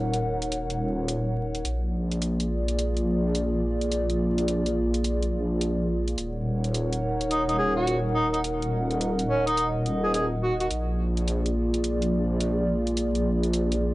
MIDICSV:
0, 0, Header, 1, 5, 480
1, 0, Start_track
1, 0, Tempo, 566038
1, 1398, Time_signature, 4, 2, 24, 8
1, 11822, End_track
2, 0, Start_track
2, 0, Title_t, "Analog synth pad"
2, 0, Program_c, 0, 89
2, 0, Note_on_c, 0, 63, 72
2, 0, Note_on_c, 0, 70, 66
2, 0, Note_on_c, 0, 73, 64
2, 0, Note_on_c, 0, 78, 81
2, 1364, Note_off_c, 0, 63, 0
2, 1364, Note_off_c, 0, 73, 0
2, 1365, Note_off_c, 0, 70, 0
2, 1366, Note_off_c, 0, 78, 0
2, 1395, Note_on_c, 0, 68, 63
2, 1396, Note_on_c, 0, 65, 66
2, 1396, Note_on_c, 0, 74, 78
2, 1398, Note_on_c, 0, 58, 67
2, 5203, Note_off_c, 0, 65, 0
2, 5203, Note_off_c, 0, 68, 0
2, 5203, Note_off_c, 0, 74, 0
2, 5204, Note_off_c, 0, 58, 0
2, 5240, Note_on_c, 0, 78, 79
2, 5241, Note_on_c, 0, 73, 62
2, 5242, Note_on_c, 0, 63, 72
2, 5242, Note_on_c, 0, 70, 65
2, 7141, Note_off_c, 0, 73, 0
2, 7161, Note_on_c, 0, 75, 64
2, 9045, Note_off_c, 0, 78, 0
2, 9046, Note_off_c, 0, 63, 0
2, 9046, Note_off_c, 0, 70, 0
2, 9060, Note_off_c, 0, 75, 0
2, 9076, Note_on_c, 0, 68, 64
2, 9077, Note_on_c, 0, 58, 72
2, 9077, Note_on_c, 0, 74, 76
2, 9078, Note_on_c, 0, 65, 66
2, 11822, Note_off_c, 0, 58, 0
2, 11822, Note_off_c, 0, 65, 0
2, 11822, Note_off_c, 0, 68, 0
2, 11822, Note_off_c, 0, 74, 0
2, 11822, End_track
3, 0, Start_track
3, 0, Title_t, "Tenor saxophone"
3, 0, Program_c, 1, 66
3, 6196, Note_on_c, 1, 63, 77
3, 6296, Note_off_c, 1, 63, 0
3, 6349, Note_on_c, 1, 63, 69
3, 6406, Note_off_c, 1, 63, 0
3, 6430, Note_on_c, 1, 68, 83
3, 6557, Note_off_c, 1, 68, 0
3, 6582, Note_on_c, 1, 66, 78
3, 6750, Note_off_c, 1, 66, 0
3, 6907, Note_on_c, 1, 63, 83
3, 7011, Note_off_c, 1, 63, 0
3, 7061, Note_on_c, 1, 63, 69
3, 7122, Note_off_c, 1, 63, 0
3, 7874, Note_on_c, 1, 61, 86
3, 7999, Note_off_c, 1, 61, 0
3, 8023, Note_on_c, 1, 63, 83
3, 8191, Note_off_c, 1, 63, 0
3, 8508, Note_on_c, 1, 68, 78
3, 8566, Note_off_c, 1, 68, 0
3, 8599, Note_on_c, 1, 68, 70
3, 8697, Note_off_c, 1, 68, 0
3, 8838, Note_on_c, 1, 66, 84
3, 8937, Note_off_c, 1, 66, 0
3, 8990, Note_on_c, 1, 66, 73
3, 9047, Note_off_c, 1, 66, 0
3, 11822, End_track
4, 0, Start_track
4, 0, Title_t, "Wobble bass"
4, 0, Program_c, 2, 39
4, 0, Note_on_c, 2, 27, 82
4, 1382, Note_off_c, 2, 27, 0
4, 1397, Note_on_c, 2, 34, 81
4, 5220, Note_off_c, 2, 34, 0
4, 5236, Note_on_c, 2, 27, 79
4, 9060, Note_off_c, 2, 27, 0
4, 9079, Note_on_c, 2, 34, 82
4, 11822, Note_off_c, 2, 34, 0
4, 11822, End_track
5, 0, Start_track
5, 0, Title_t, "Drums"
5, 114, Note_on_c, 9, 42, 48
5, 199, Note_off_c, 9, 42, 0
5, 355, Note_on_c, 9, 42, 51
5, 438, Note_off_c, 9, 42, 0
5, 438, Note_on_c, 9, 42, 74
5, 523, Note_off_c, 9, 42, 0
5, 593, Note_on_c, 9, 42, 35
5, 678, Note_off_c, 9, 42, 0
5, 918, Note_on_c, 9, 42, 78
5, 1003, Note_off_c, 9, 42, 0
5, 1312, Note_on_c, 9, 42, 33
5, 1397, Note_off_c, 9, 42, 0
5, 1400, Note_on_c, 9, 42, 68
5, 1485, Note_off_c, 9, 42, 0
5, 1795, Note_on_c, 9, 42, 34
5, 1879, Note_off_c, 9, 42, 0
5, 1881, Note_on_c, 9, 42, 75
5, 1966, Note_off_c, 9, 42, 0
5, 2035, Note_on_c, 9, 42, 49
5, 2119, Note_off_c, 9, 42, 0
5, 2275, Note_on_c, 9, 42, 48
5, 2360, Note_off_c, 9, 42, 0
5, 2362, Note_on_c, 9, 42, 71
5, 2447, Note_off_c, 9, 42, 0
5, 2516, Note_on_c, 9, 42, 32
5, 2600, Note_off_c, 9, 42, 0
5, 2840, Note_on_c, 9, 42, 70
5, 2924, Note_off_c, 9, 42, 0
5, 3234, Note_on_c, 9, 42, 33
5, 3319, Note_off_c, 9, 42, 0
5, 3320, Note_on_c, 9, 42, 69
5, 3405, Note_off_c, 9, 42, 0
5, 3474, Note_on_c, 9, 42, 33
5, 3558, Note_off_c, 9, 42, 0
5, 3714, Note_on_c, 9, 42, 32
5, 3799, Note_off_c, 9, 42, 0
5, 3799, Note_on_c, 9, 42, 68
5, 3884, Note_off_c, 9, 42, 0
5, 3952, Note_on_c, 9, 42, 47
5, 4037, Note_off_c, 9, 42, 0
5, 4190, Note_on_c, 9, 42, 48
5, 4275, Note_off_c, 9, 42, 0
5, 4277, Note_on_c, 9, 42, 72
5, 4362, Note_off_c, 9, 42, 0
5, 4431, Note_on_c, 9, 42, 32
5, 4515, Note_off_c, 9, 42, 0
5, 4758, Note_on_c, 9, 42, 72
5, 4843, Note_off_c, 9, 42, 0
5, 5153, Note_on_c, 9, 42, 31
5, 5237, Note_off_c, 9, 42, 0
5, 5239, Note_on_c, 9, 42, 63
5, 5324, Note_off_c, 9, 42, 0
5, 5632, Note_on_c, 9, 42, 31
5, 5717, Note_off_c, 9, 42, 0
5, 5719, Note_on_c, 9, 42, 71
5, 5803, Note_off_c, 9, 42, 0
5, 5873, Note_on_c, 9, 42, 46
5, 5958, Note_off_c, 9, 42, 0
5, 6113, Note_on_c, 9, 42, 48
5, 6198, Note_off_c, 9, 42, 0
5, 6198, Note_on_c, 9, 42, 68
5, 6283, Note_off_c, 9, 42, 0
5, 6352, Note_on_c, 9, 42, 31
5, 6437, Note_off_c, 9, 42, 0
5, 6677, Note_on_c, 9, 42, 66
5, 6762, Note_off_c, 9, 42, 0
5, 7072, Note_on_c, 9, 42, 32
5, 7157, Note_off_c, 9, 42, 0
5, 7160, Note_on_c, 9, 42, 69
5, 7245, Note_off_c, 9, 42, 0
5, 7314, Note_on_c, 9, 42, 32
5, 7398, Note_off_c, 9, 42, 0
5, 7554, Note_on_c, 9, 42, 30
5, 7639, Note_off_c, 9, 42, 0
5, 7640, Note_on_c, 9, 42, 70
5, 7725, Note_off_c, 9, 42, 0
5, 7794, Note_on_c, 9, 42, 46
5, 7879, Note_off_c, 9, 42, 0
5, 8033, Note_on_c, 9, 42, 46
5, 8117, Note_off_c, 9, 42, 0
5, 8119, Note_on_c, 9, 42, 68
5, 8203, Note_off_c, 9, 42, 0
5, 8360, Note_on_c, 9, 42, 35
5, 8445, Note_off_c, 9, 42, 0
5, 8599, Note_on_c, 9, 42, 73
5, 8684, Note_off_c, 9, 42, 0
5, 8992, Note_on_c, 9, 42, 33
5, 9077, Note_off_c, 9, 42, 0
5, 9079, Note_on_c, 9, 42, 70
5, 9164, Note_off_c, 9, 42, 0
5, 9473, Note_on_c, 9, 42, 33
5, 9558, Note_off_c, 9, 42, 0
5, 9562, Note_on_c, 9, 42, 69
5, 9647, Note_off_c, 9, 42, 0
5, 9715, Note_on_c, 9, 42, 46
5, 9800, Note_off_c, 9, 42, 0
5, 9954, Note_on_c, 9, 42, 47
5, 10039, Note_off_c, 9, 42, 0
5, 10039, Note_on_c, 9, 42, 70
5, 10124, Note_off_c, 9, 42, 0
5, 10192, Note_on_c, 9, 42, 33
5, 10277, Note_off_c, 9, 42, 0
5, 10519, Note_on_c, 9, 42, 72
5, 10604, Note_off_c, 9, 42, 0
5, 10913, Note_on_c, 9, 42, 33
5, 10997, Note_off_c, 9, 42, 0
5, 10997, Note_on_c, 9, 42, 73
5, 11082, Note_off_c, 9, 42, 0
5, 11152, Note_on_c, 9, 42, 33
5, 11237, Note_off_c, 9, 42, 0
5, 11393, Note_on_c, 9, 42, 34
5, 11477, Note_off_c, 9, 42, 0
5, 11478, Note_on_c, 9, 42, 76
5, 11562, Note_off_c, 9, 42, 0
5, 11633, Note_on_c, 9, 42, 48
5, 11718, Note_off_c, 9, 42, 0
5, 11822, End_track
0, 0, End_of_file